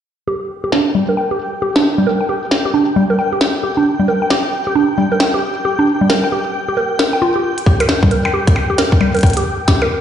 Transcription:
0.27 0.39 G4 medium
0.27 10.01 G5 medium
0.64 0.71 G4 medium
0.72 0.84 D4 medium
0.72 snare loud
0.95 1.02 G3 medium
1.09 1.16 A#4 medium
1.17 1.29 G5 medium
1.31 1.38 G4 medium
1.62 1.74 G4 medium
1.76 1.83 D4 medium
1.76 snare loud
1.98 2.03 G3 medium
2.07 2.19 A#4 medium
2.21 2.28 G5 medium
2.29 2.41 G4 medium
2.51 snare loud
2.65 2.73 G4 medium
2.74 2.86 D4 medium
2.96 3.03 G3 medium
3.10 3.17 A#4 medium
3.19 3.31 G5 medium
3.33 3.40 G4 medium
3.41 snare loud
3.63 3.75 G4 medium
3.77 3.84 D4 medium
4.00 4.04 G3 medium
4.08 4.20 A#4 medium
4.22 4.29 G5 medium
4.30 4.42 G4 medium
4.30 snare loud
4.67 4.74 G4 medium
4.75 4.87 D4 medium
4.98 5.05 G3 medium
5.12 5.19 A#4 medium
5.20 5.32 G5 medium
5.20 snare loud
5.34 5.41 G4 medium
5.65 5.77 G4 medium
5.79 5.86 D4 medium
6.01 6.06 G3 medium
6.10 6.22 A#4 medium
6.10 snare loud
6.24 6.31 G5 medium
6.32 6.44 G4 medium
6.68 6.76 G4 medium
6.77 6.89 A#4 medium
6.99 7.06 A#4 medium
6.99 snare loud
7.13 7.20 G5 medium
7.22 7.29 F4 loud
7.36 7.43 G4 medium
7.58 closed hi-hat medium
7.66 7.78 G4 medium
7.66 kick loud
7.80 7.85 A#4 medium
7.80 closed hi-hat medium
7.80 percussion blips soft
7.89 snare loud
8.03 8.07 G3 medium
8.03 kick loud
8.11 8.23 A#4 medium
8.11 closed hi-hat soft
8.25 8.32 G5 medium
8.25 percussion blips medium
8.34 8.45 G4 medium
8.47 kick loud
8.47 closed hi-hat medium
8.56 percussion blips medium
8.70 8.77 G4 medium
8.78 8.85 A#4 medium
8.78 snare loud
8.78 closed hi-hat medium
8.92 kick loud
9.01 9.08 G3 medium
9.01 percussion blips soft
9.15 9.22 A#4 medium
9.15 closed hi-hat soft
9.17 closed hi-hat soft
9.19 closed hi-hat soft
9.21 closed hi-hat soft
9.23 9.35 G5 medium
9.23 kick loud
9.23 closed hi-hat medium
9.26 closed hi-hat medium
9.30 closed hi-hat medium
9.33 closed hi-hat medium
9.37 9.44 G4 medium
9.37 closed hi-hat medium
9.68 9.80 G4 medium
9.68 kick loud
9.68 snare loud
9.68 closed hi-hat soft
9.82 9.86 A#4 medium
9.82 percussion blips soft

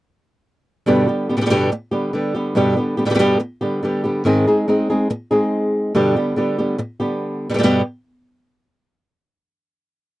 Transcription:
0.86 1.07 G2 medium
0.86 1.07 B2 medium
0.86 1.07 D3 medium
0.86 1.07 G3 medium
0.86 1.07 B3 medium
0.86 1.06 G4 medium
1.07 1.29 D3 soft
1.07 1.28 G3 soft
1.07 1.28 B3 soft
1.07 1.28 G4 soft
1.29 1.36 D3 soft
1.29 1.36 G3 soft
1.29 1.36 B3 medium
1.29 1.37 G4 medium
1.37 1.40 B2 soft
1.37 1.40 D3 medium
1.37 1.40 G3 medium
1.37 1.40 B3 medium
1.37 1.41 G4 medium
1.41 1.45 B2 medium
1.41 1.45 D3 medium
1.41 1.45 G3 medium
1.41 1.45 B3 medium
1.41 1.46 G4 medium
1.46 1.49 B2 medium
1.46 1.49 D3 medium
1.46 1.50 G3 medium
1.46 1.50 B3 medium
1.46 1.50 G4 medium
1.50 1.70 G2 medium
1.50 1.70 B2 medium
1.50 1.70 D3 medium
1.50 1.71 G3 medium
1.50 1.71 B3 medium
1.50 1.71 G4 medium
1.72 muted nylon-string guitar stroke medium
1.91 2.12 D3 soft
1.91 2.13 G3 medium
1.91 2.12 B3 soft
1.91 2.12 G4 medium
2.13 2.33 D3 medium
2.13 2.34 G3 medium
2.13 2.34 B3 medium
2.13 2.33 G4 medium
2.34 2.55 D3 soft
2.34 2.55 G3 soft
2.34 2.55 B3 soft
2.34 2.55 G4 soft
2.55 2.75 G2 medium
2.55 2.76 B2 medium
2.55 2.76 D3 medium
2.55 2.76 G3 medium
2.55 2.76 B3 medium
2.55 2.75 G4 medium
2.77 2.98 D3 soft
2.77 2.97 G3 soft
2.77 2.97 B3 soft
2.77 2.96 G4 medium
2.97 3.05 D3 soft
2.97 3.05 G3 soft
2.97 3.05 B3 medium
2.97 3.05 G4 medium
3.05 3.09 B2 soft
3.05 3.09 D3 soft
3.05 3.10 G3 soft
3.05 3.10 B3 soft
3.05 3.10 G4 medium
3.10 3.13 B2 medium
3.10 3.14 D3 medium
3.10 3.14 G3 medium
3.10 3.14 B3 medium
3.10 3.14 G4 medium
3.14 3.18 B2 medium
3.14 3.18 D3 medium
3.14 3.18 G3 medium
3.14 3.19 B3 medium
3.14 3.19 G4 medium
3.19 3.38 G2 medium
3.19 3.39 B2 medium
3.19 3.39 D3 medium
3.19 3.39 G3 medium
3.19 3.39 B3 medium
3.19 3.39 G4 loud
3.40 muted nylon-string guitar stroke medium
3.61 3.81 D3 soft
3.61 3.82 G3 soft
3.61 3.82 B3 medium
3.61 3.81 G4 medium
3.83 4.03 D3 medium
3.83 4.03 G3 medium
3.83 4.03 B3 medium
3.83 4.03 G4 medium
4.04 4.25 D3 soft
4.04 4.25 G3 soft
4.04 4.24 B3 soft
4.04 4.24 G4 medium
4.25 4.45 G#2 medium
4.25 4.45 D#3 medium
4.25 4.45 G#3 medium
4.25 4.45 C4 medium
4.25 4.46 D#4 medium
4.25 4.46 G#4 medium
4.47 4.67 G#3 soft
4.47 4.67 C4 soft
4.47 4.67 D#4 medium
4.47 4.67 G#4 medium
4.68 4.88 G#3 medium
4.68 4.88 C4 medium
4.68 4.88 D#4 medium
4.68 4.88 G#4 medium
4.90 5.09 G#3 soft
4.90 5.09 C4 soft
4.90 5.09 D#4 medium
4.90 5.09 G#4 medium
5.10 muted nylon-string guitar stroke medium
5.31 5.94 G#3 soft
5.31 5.94 C4 soft
5.31 5.94 D#4 medium
5.31 5.93 G#4 medium
5.95 6.15 G2 medium
5.95 6.15 B2 medium
5.95 6.15 D3 medium
5.95 6.15 G3 medium
5.95 6.15 B3 medium
5.95 6.15 G4 medium
6.16 6.35 D3 soft
6.16 6.36 G3 soft
6.16 6.36 B3 soft
6.16 6.36 G4 medium
6.36 6.57 D3 medium
6.36 6.57 G3 medium
6.36 6.57 B3 medium
6.36 6.57 G4 medium
6.58 6.77 D3 soft
6.58 6.78 G3 soft
6.58 6.78 B3 medium
6.58 6.78 G4 soft
6.78 muted nylon-string guitar stroke medium
7.00 7.48 D3 soft
7.00 7.49 G3 soft
7.00 7.50 B3 medium
7.00 7.50 G4 medium
7.50 7.53 B2 soft
7.50 7.53 D3 medium
7.50 7.53 G3 medium
7.50 7.54 B3 soft
7.50 7.54 G4 medium
7.54 7.57 B2 medium
7.54 7.57 D3 medium
7.54 7.58 G3 medium
7.54 7.58 B3 medium
7.54 7.59 G4 medium
7.59 7.62 B2 medium
7.59 7.62 D3 medium
7.59 7.62 G3 medium
7.59 7.63 B3 medium
7.59 7.63 G4 medium
7.63 7.80 G2 medium
7.63 7.81 B2 medium
7.63 7.81 D3 medium
7.63 7.81 G3 medium
7.63 7.81 B3 medium
7.63 7.81 G4 medium

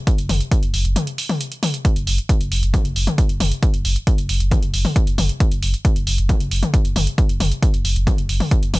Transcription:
0.07 kick loud
0.07 closed hi-hat medium
0.18 0.29 F#1 medium
0.18 closed hi-hat medium
0.29 0.40 F#1 loud
0.29 open hi-hat loud
0.29 mid tom medium
0.41 closed hi-hat medium
0.52 kick loud
0.52 closed hi-hat medium
0.63 0.73 F#1 medium
0.63 closed hi-hat medium
0.74 0.84 F#1 loud
0.74 open hi-hat loud
0.85 0.96 F#1 medium
0.85 closed hi-hat medium
0.96 closed hi-hat medium
0.96 mid tom medium
1.07 closed hi-hat medium
1.18 open hi-hat loud
1.29 open hi-hat medium
1.29 mid tom medium
1.41 closed hi-hat medium
1.52 closed hi-hat medium
1.63 open hi-hat loud
1.63 mid tom medium
1.74 closed hi-hat medium
1.85 kick loud
1.85 closed hi-hat medium
1.96 2.06 F#1 medium
1.96 closed hi-hat medium
2.07 2.18 F#1 loud
2.07 open hi-hat loud
2.18 closed hi-hat medium
2.29 kick loud
2.29 closed hi-hat medium
2.41 2.51 F#1 medium
2.41 closed hi-hat medium
2.52 2.62 F#1 loud
2.52 open hi-hat loud
2.63 2.74 F#1 medium
2.63 closed hi-hat medium
2.74 kick loud
2.74 closed hi-hat medium
2.74 mid tom medium
2.85 2.95 F#1 medium
2.85 closed hi-hat medium
2.96 3.07 F#1 loud
2.96 open hi-hat loud
3.07 closed hi-hat medium
3.07 mid tom medium
3.18 kick loud
3.18 closed hi-hat medium
3.29 3.40 F#1 medium
3.29 closed hi-hat medium
3.40 3.51 F#1 loud
3.40 open hi-hat loud
3.40 mid tom medium
3.51 closed hi-hat medium
3.63 kick loud
3.63 closed hi-hat medium
3.74 3.84 F#1 medium
3.74 closed hi-hat medium
3.85 3.96 F#1 loud
3.85 open hi-hat loud
3.96 closed hi-hat medium
4.07 kick loud
4.07 closed hi-hat medium
4.18 4.29 F#1 medium
4.18 closed hi-hat medium
4.29 4.40 F#1 loud
4.29 open hi-hat loud
4.40 4.51 F#1 medium
4.40 closed hi-hat medium
4.51 kick loud
4.51 closed hi-hat medium
4.51 mid tom medium
4.63 4.73 F#1 medium
4.63 closed hi-hat medium
4.74 4.85 F#1 loud
4.74 open hi-hat loud
4.85 open hi-hat medium
4.85 mid tom medium
4.96 kick loud
4.96 closed hi-hat medium
5.07 5.18 F#1 medium
5.07 closed hi-hat medium
5.18 5.29 F#1 loud
5.18 open hi-hat loud
5.18 mid tom medium
5.29 closed hi-hat medium
5.40 kick loud
5.40 closed hi-hat medium
5.51 5.62 F#1 medium
5.51 closed hi-hat medium
5.63 5.74 F#1 loud
5.63 open hi-hat loud
5.74 closed hi-hat soft
5.85 kick loud
5.85 closed hi-hat medium
5.96 6.06 F#1 medium
5.96 closed hi-hat medium
6.07 6.18 F#1 loud
6.07 open hi-hat loud
6.18 6.29 F#1 medium
6.18 closed hi-hat medium
6.29 kick loud
6.29 closed hi-hat medium
6.29 mid tom medium
6.40 6.51 F#1 medium
6.40 closed hi-hat medium
6.51 6.62 F#1 loud
6.51 open hi-hat loud
6.63 closed hi-hat medium
6.63 mid tom medium
6.74 kick loud
6.74 closed hi-hat medium
6.85 6.95 F#1 medium
6.85 closed hi-hat medium
6.96 7.07 F#1 loud
6.96 open hi-hat loud
6.96 mid tom medium
7.07 closed hi-hat medium
7.18 kick loud
7.18 closed hi-hat medium
7.29 7.40 F#1 medium
7.29 closed hi-hat medium
7.40 7.51 F#1 loud
7.40 open hi-hat loud
7.40 mid tom medium
7.52 closed hi-hat medium
7.63 kick loud
7.63 closed hi-hat medium
7.74 7.84 F#1 medium
7.74 closed hi-hat medium
7.85 7.95 F#1 loud
7.85 open hi-hat loud
7.96 8.07 F#1 medium
7.96 closed hi-hat medium
8.07 kick loud
8.07 closed hi-hat medium
8.07 mid tom medium
8.18 8.28 F#1 medium
8.18 closed hi-hat medium
8.29 8.40 F#1 loud
8.29 open hi-hat loud
8.40 open hi-hat medium
8.40 mid tom medium
8.51 kick loud
8.51 closed hi-hat medium
8.63 8.73 F#1 medium
8.63 closed hi-hat medium
8.74 8.79 F#1 loud
8.74 open hi-hat loud
8.74 mid tom medium

